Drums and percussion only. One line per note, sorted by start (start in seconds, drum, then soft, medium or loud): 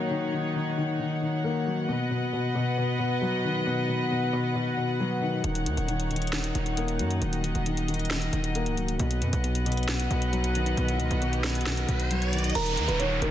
5.44 closed hi-hat medium
5.55 closed hi-hat medium
5.66 closed hi-hat medium
5.77 closed hi-hat medium
5.88 closed hi-hat medium
6.00 closed hi-hat medium
6.11 closed hi-hat medium
6.16 closed hi-hat medium
6.22 closed hi-hat medium
6.27 closed hi-hat medium
6.33 snare loud
6.33 closed hi-hat medium
6.44 closed hi-hat medium
6.55 closed hi-hat medium
6.66 closed hi-hat medium
6.77 closed hi-hat medium
6.88 closed hi-hat medium
6.99 closed hi-hat medium
7.11 closed hi-hat medium
7.22 closed hi-hat medium
7.33 closed hi-hat medium
7.44 closed hi-hat medium
7.55 closed hi-hat medium
7.66 closed hi-hat medium
7.77 closed hi-hat medium
7.88 closed hi-hat medium
7.94 closed hi-hat medium
7.99 closed hi-hat medium
8.05 closed hi-hat medium
8.11 snare loud
8.11 closed hi-hat medium
8.22 closed hi-hat medium
8.33 closed hi-hat medium
8.44 closed hi-hat medium
8.55 closed hi-hat medium
8.66 closed hi-hat medium
8.77 closed hi-hat medium
8.88 closed hi-hat medium
9.00 closed hi-hat medium
9.11 closed hi-hat medium
9.22 closed hi-hat medium
9.33 closed hi-hat medium
9.44 closed hi-hat medium
9.55 closed hi-hat medium
9.66 closed hi-hat medium
9.72 closed hi-hat medium
9.77 closed hi-hat medium
9.83 closed hi-hat medium
9.88 snare loud
9.88 closed hi-hat medium
10.00 closed hi-hat medium
10.11 closed hi-hat medium
10.22 closed hi-hat medium
10.33 closed hi-hat medium
10.44 closed hi-hat medium
10.55 closed hi-hat medium
10.66 closed hi-hat medium
10.77 closed hi-hat medium
10.88 closed hi-hat medium
11.00 closed hi-hat medium
11.11 closed hi-hat medium
11.22 closed hi-hat medium
11.33 closed hi-hat medium
11.44 snare loud
11.44 closed hi-hat soft
11.44 open hi-hat medium
11.50 closed hi-hat medium
11.55 closed hi-hat medium
11.61 closed hi-hat medium
11.66 snare loud
11.66 closed hi-hat medium
11.77 closed hi-hat medium
11.89 closed hi-hat medium
12.00 closed hi-hat medium
12.11 closed hi-hat medium
12.22 closed hi-hat medium
12.33 closed hi-hat medium
12.38 closed hi-hat medium
12.44 closed hi-hat medium
12.50 closed hi-hat medium
12.55 closed hi-hat medium
12.55 crash loud
12.66 closed hi-hat medium
12.77 closed hi-hat medium
12.89 closed hi-hat medium
13.00 closed hi-hat medium
13.22 closed hi-hat medium